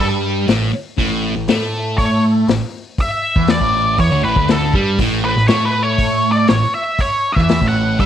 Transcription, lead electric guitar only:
0.00 0.07 A4 medium
1.98 2.21 C#5 medium
3.01 3.51 E5 loud
3.50 3.99 D5 loud
4.00 4.24 C#5 medium
4.24 4.50 B4 medium
4.50 4.73 A4 medium
5.25 5.48 B4 medium
5.48 5.65 C#5 medium
5.65 5.83 B4 medium
5.83 6.31 C#5 medium
6.32 6.48 D5 medium
6.49 6.72 C#5 medium
6.74 7.00 E5 loud
7.00 7.35 C#5 loud
7.32 7.67 E5 loud
7.68 8.00 F#5 medium
8.00 8.06 E5 medium

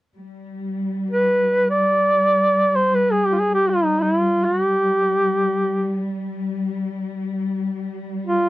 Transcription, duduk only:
1.10 1.67 B4 medium
1.70 2.77 D5 medium
2.76 2.96 C5 medium
2.95 3.13 B4 medium
3.12 3.28 G#4 medium
3.27 3.34 G4 medium
3.32 3.36 F4 soft
3.32 3.41 G4 medium
3.40 3.53 G#4 medium
3.54 3.71 G4 medium
3.69 3.86 F4 medium
3.85 4.04 D#4 medium
4.02 4.19 E4 medium
4.19 4.46 F4 medium
4.44 4.62 F#4 medium
4.62 6.14 G4 medium
8.26 8.49 F4 medium

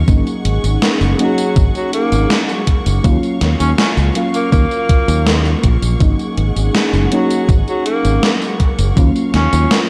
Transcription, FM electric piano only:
0.06 1.14 F#3 medium
0.06 1.14 A#3 medium
0.06 1.15 C#4 medium
0.06 1.15 D#4 medium
1.18 2.99 F#3 medium
1.18 3.00 A#3 medium
1.18 3.00 C#4 medium
1.18 3.01 D#4 medium
3.03 4.10 F#3 medium
3.03 4.11 A#3 medium
3.03 4.11 C#4 medium
3.03 4.12 F4 medium
4.14 5.96 F#3 medium
4.14 5.96 A#3 medium
4.14 5.97 C#4 medium
4.14 5.97 F4 medium
5.99 7.07 F#3 medium
5.99 7.07 A#3 medium
5.99 7.08 C#4 medium
5.99 7.08 D#4 medium
7.10 8.92 F#3 medium
7.10 8.92 A#3 medium
7.10 8.93 C#4 medium
7.10 8.93 D#4 medium
8.96 9.89 F#3 medium
8.96 9.89 A#3 medium
8.96 9.89 C#4 medium
8.96 9.89 F4 medium

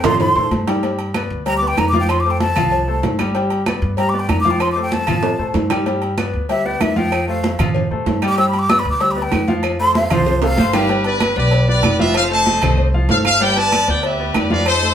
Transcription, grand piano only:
0.04 0.30 F3 loud
0.04 0.30 F4 medium
0.04 0.30 F5 medium
0.36 0.61 A3 medium
0.36 0.62 A4 medium
0.36 0.62 C5 medium
0.67 0.80 G3 medium
0.67 0.80 G4 medium
0.67 0.80 G5 medium
0.83 1.09 G3 medium
0.83 1.09 G4 medium
0.83 1.09 G5 medium
1.15 1.40 B3 medium
1.15 1.41 B4 medium
1.15 1.41 D5 medium
1.46 1.59 G3 medium
1.46 1.59 G4 medium
1.46 1.59 G5 medium
1.62 1.88 B3 medium
1.62 1.88 B4 medium
1.62 1.88 D5 medium
1.94 2.19 F3 medium
1.94 2.19 F4 loud
1.94 2.20 F5 medium
2.25 2.51 A3 medium
2.25 2.51 A4 medium
2.25 2.51 C5 medium
2.56 2.82 F3 medium
2.56 2.82 F4 medium
2.56 2.82 F5 medium
2.88 3.13 A3 medium
2.88 3.14 A4 medium
2.88 3.14 C5 medium
3.19 3.32 G3 loud
3.19 3.32 G4 medium
3.19 3.32 G5 medium
3.35 3.61 G3 medium
3.35 3.61 G4 medium
3.35 3.61 G5 medium
3.66 3.92 B3 medium
3.66 3.92 B4 medium
3.66 3.92 D5 medium
3.98 4.11 G3 medium
3.98 4.11 G4 medium
3.98 4.11 G5 medium
4.13 4.39 B3 medium
4.13 4.39 B4 medium
4.13 4.39 D5 medium
4.45 4.70 F3 loud
4.45 4.71 F4 medium
4.45 4.71 F5 medium
4.76 5.02 A3 medium
4.76 5.02 A4 medium
4.76 5.02 C5 medium
5.07 5.33 F3 medium
5.07 5.33 F4 medium
5.07 5.33 F5 medium
5.39 5.65 A3 medium
5.39 5.65 A4 medium
5.39 5.65 C5 medium
5.70 5.83 G3 loud
5.70 5.83 G4 medium
5.70 5.83 G5 medium
5.86 6.12 G3 medium
5.86 6.12 G4 medium
5.86 6.12 G5 medium
6.18 6.43 B3 medium
6.18 6.44 B4 medium
6.18 6.44 D5 medium
6.49 6.62 G3 medium
6.49 6.62 G4 medium
6.49 6.62 G5 medium
6.65 6.91 B3 medium
6.65 6.91 B4 medium
6.65 6.91 D5 medium
6.96 7.22 F3 medium
6.96 7.22 F4 loud
6.96 7.22 F5 medium
7.28 7.54 A3 medium
7.28 7.54 A4 medium
7.28 7.54 C5 medium
7.59 7.85 F3 medium
7.59 7.85 F4 medium
7.59 7.85 F5 medium
7.91 8.16 A3 medium
7.91 8.17 A4 medium
7.91 8.17 C5 medium
8.22 8.35 G3 loud
8.22 8.35 G4 loud
8.22 8.35 G5 loud
8.38 8.64 G3 medium
8.38 8.64 G4 medium
8.38 8.64 G5 medium
8.69 8.95 B3 medium
8.69 8.95 B4 medium
8.69 8.95 D5 medium
9.00 9.13 G3 medium
9.00 9.14 G4 medium
9.00 9.14 G5 medium
9.16 9.42 B3 medium
9.16 9.42 B4 medium
9.16 9.42 D5 medium
9.48 9.74 F3 medium
9.48 9.74 F4 medium
9.48 9.74 F5 medium
9.79 10.05 A3 medium
9.79 10.05 A4 medium
9.79 10.05 C5 medium
10.11 10.37 F3 loud
10.11 10.37 F4 medium
10.11 10.37 F5 medium
10.42 10.68 A3 medium
10.42 10.68 A4 medium
10.42 10.68 C5 medium
10.74 10.86 G3 loud
10.74 10.87 G4 loud
10.74 10.87 G5 loud
10.89 11.02 G3 medium
10.89 11.02 G4 medium
10.89 11.02 G5 medium
11.05 11.31 B3 medium
11.05 11.31 B4 medium
11.05 11.31 D5 medium
11.36 11.62 B3 medium
11.36 11.62 B4 medium
11.36 11.62 D5 medium
11.67 11.93 B3 medium
11.67 11.94 B4 medium
11.67 11.94 D5 medium
11.99 12.25 F3 loud
11.99 12.25 F4 medium
11.99 12.25 F5 loud
12.30 12.56 A3 medium
12.30 12.56 A4 medium
12.30 12.57 C5 medium
12.62 12.88 A3 medium
12.62 12.88 A4 medium
12.62 12.88 C5 medium
12.94 13.07 F3 medium
12.94 13.07 F4 medium
12.94 13.07 F5 medium
13.09 13.35 A3 medium
13.09 13.35 A4 medium
13.09 13.35 C5 medium
13.41 13.54 G3 loud
13.41 13.54 G4 medium
13.41 13.54 G5 medium
13.56 13.82 B3 medium
13.56 13.82 B4 medium
13.56 13.82 D5 medium
13.88 14.14 B3 medium
13.88 14.14 B4 medium
13.88 14.14 D5 medium
14.19 14.45 B3 medium
14.19 14.45 B4 medium
14.19 14.45 D5 medium
14.50 14.76 F3 loud
14.50 14.76 F4 loud
14.50 14.77 F5 medium
14.82 14.94 A3 medium
14.82 14.94 A4 medium
14.82 14.94 C5 medium

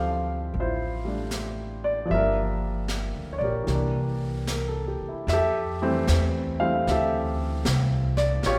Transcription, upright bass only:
0.00 0.50 D2 medium
0.54 2.06 A1 medium
2.11 3.11 G1 medium
3.15 3.40 D2 soft
3.41 3.65 A#1 medium
3.67 4.96 C2 medium
5.01 muted upright bass stroke soft
5.27 6.05 F2 medium
6.08 6.85 E2 medium
6.87 7.63 D2 medium
7.65 8.41 C2 medium
8.44 8.59 A1 medium

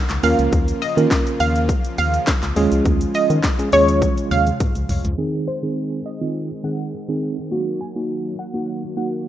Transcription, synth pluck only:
0.24 0.34 F5 medium
0.82 0.92 D#5 medium
1.40 1.60 F5 medium
1.98 2.18 F5 medium
3.15 3.25 D#5 medium
3.73 4.15 C#5 medium
4.31 4.42 F5 medium
5.48 5.58 C5 medium
6.06 6.26 D#5 medium
6.64 6.84 F#5 medium
7.81 7.91 G#5 medium
8.39 8.81 F#5 medium
8.97 9.08 F#5 medium

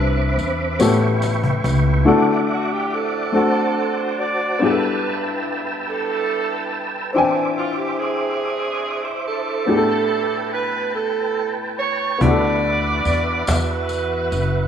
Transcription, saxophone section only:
0.00 1.20 D4 medium
0.00 1.20 F4 medium
0.00 1.21 B4 loud
2.53 2.71 F#4 medium
2.73 2.92 G4 medium
2.94 4.16 C4 medium
2.94 4.16 D4 medium
2.94 3.99 A4 medium
3.99 4.20 C5 medium
4.19 4.61 D5 loud
4.63 5.85 D4 medium
4.63 5.85 E4 medium
4.63 5.47 B4 medium
5.89 7.11 D4 medium
5.89 7.11 E4 medium
5.89 6.79 A4 loud
7.58 7.77 F4 medium
7.78 7.99 G4 medium
7.99 9.22 C4 medium
7.99 9.22 D4 medium
7.99 9.04 G#4 medium
9.04 9.24 C5 medium
9.28 10.49 D4 medium
9.28 10.50 E4 medium
9.28 10.53 A4 loud
10.53 10.92 B4 medium
10.96 11.52 A4 medium
11.79 12.18 C#5 loud
12.22 13.44 F#4 medium
12.22 13.44 B4 medium
12.22 13.48 D5 loud
13.49 14.68 E4 medium
13.49 14.68 F#4 medium
13.49 14.68 B4 loud

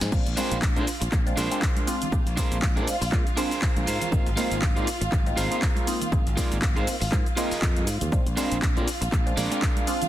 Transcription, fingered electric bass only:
0.01 0.09 G#2 loud
0.12 0.23 A#1 loud
0.26 0.34 A#1 loud
0.51 0.78 A#1 medium
0.77 0.84 A#2 medium
1.01 1.09 A#1 loud
1.12 1.31 A#1 loud
1.37 1.48 A#1 loud
2.12 2.23 A#1 medium
2.26 2.34 A#1 loud
2.52 2.78 A#1 medium
2.76 2.84 A#2 medium
2.87 muted fingered electric bass stroke soft
3.01 3.09 A#1 medium
3.12 3.23 A#2 medium
3.76 3.84 A#1 medium
3.87 3.98 G#2 medium
4.12 4.23 G#1 loud
4.26 4.34 G#1 loud
4.51 4.78 G#1 medium
4.76 4.84 G#2 medium
5.01 5.09 G#1 medium
5.37 5.47 G#1 loud
6.12 6.23 G#1 loud
6.26 6.34 G#1 loud
6.52 6.78 G#1 medium
6.76 6.84 G#2 medium
6.87 muted fingered electric bass stroke soft
7.01 7.09 G#1 loud
7.12 7.23 G#2 medium
7.52 muted fingered electric bass stroke soft
7.62 7.87 F2 medium
7.87 7.98 G#2 loud
8.02 8.09 D#2 loud
8.12 8.23 A#1 medium
8.27 8.34 A#1 medium
8.52 8.78 A#1 medium
8.77 8.84 A#2 medium
9.01 9.09 A#1 loud
9.12 9.31 A#1 loud
9.37 9.48 A#1 loud

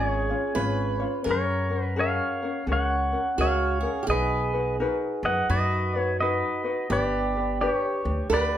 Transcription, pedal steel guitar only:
0.00 0.99 G#4 medium
0.00 1.01 C#5 medium
1.31 1.95 A#4 medium
1.31 1.84 C#5 medium
1.84 1.98 B4 medium
1.99 2.65 C#5 medium
1.99 2.65 F5 medium
2.72 3.41 C#5 medium
2.72 3.45 F#5 medium
3.41 4.06 C#5 medium
3.41 3.45 F5 medium
3.41 3.81 F5 medium
4.10 4.76 B4 medium
4.10 4.76 D#5 medium
5.25 5.48 D#5 medium
5.25 5.51 F#5 medium
5.50 6.16 B4 medium
5.50 6.00 D#5 medium
6.00 6.16 C#5 medium
6.21 6.87 B4 medium
6.21 6.92 D#5 medium
6.92 7.57 B4 medium
6.92 7.61 D5 medium
7.61 8.27 G4 medium
7.61 7.72 D5 medium
7.72 8.33 C#5 medium
8.33 8.58 B4 medium
8.33 8.58 D5 medium

